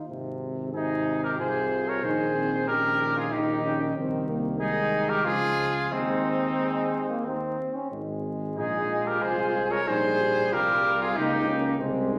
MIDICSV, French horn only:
0, 0, Header, 1, 2, 480
1, 0, Start_track
1, 0, Key_signature, -4, "major"
1, 0, Tempo, 647249
1, 60, Time_signature, 3, 2, 24, 8
1, 3899, Tempo, 662252
1, 6779, Tempo, 643777
1, 8983, End_track
2, 0, Start_track
2, 0, Title_t, "French horn"
2, 0, Program_c, 0, 60
2, 543, Note_on_c, 0, 63, 71
2, 999, Note_off_c, 0, 63, 0
2, 1034, Note_on_c, 0, 65, 81
2, 1501, Note_off_c, 0, 65, 0
2, 1508, Note_on_c, 0, 63, 83
2, 1743, Note_off_c, 0, 63, 0
2, 1750, Note_on_c, 0, 60, 78
2, 1987, Note_on_c, 0, 61, 72
2, 1998, Note_off_c, 0, 60, 0
2, 2465, Note_off_c, 0, 61, 0
2, 2469, Note_on_c, 0, 63, 82
2, 2702, Note_off_c, 0, 63, 0
2, 2708, Note_on_c, 0, 61, 85
2, 2943, Note_on_c, 0, 60, 87
2, 2954, Note_off_c, 0, 61, 0
2, 3184, Note_on_c, 0, 58, 90
2, 3195, Note_off_c, 0, 60, 0
2, 3412, Note_off_c, 0, 58, 0
2, 3416, Note_on_c, 0, 56, 89
2, 4355, Note_off_c, 0, 56, 0
2, 4372, Note_on_c, 0, 60, 90
2, 5557, Note_off_c, 0, 60, 0
2, 6308, Note_on_c, 0, 65, 99
2, 7258, Note_on_c, 0, 63, 87
2, 7269, Note_off_c, 0, 65, 0
2, 7504, Note_on_c, 0, 67, 105
2, 7515, Note_off_c, 0, 63, 0
2, 7736, Note_off_c, 0, 67, 0
2, 7741, Note_on_c, 0, 65, 105
2, 8210, Note_off_c, 0, 65, 0
2, 8219, Note_on_c, 0, 63, 102
2, 8449, Note_on_c, 0, 61, 91
2, 8460, Note_off_c, 0, 63, 0
2, 8684, Note_off_c, 0, 61, 0
2, 8689, Note_on_c, 0, 60, 95
2, 8932, Note_on_c, 0, 63, 99
2, 8943, Note_off_c, 0, 60, 0
2, 8983, Note_off_c, 0, 63, 0
2, 8983, End_track
0, 0, End_of_file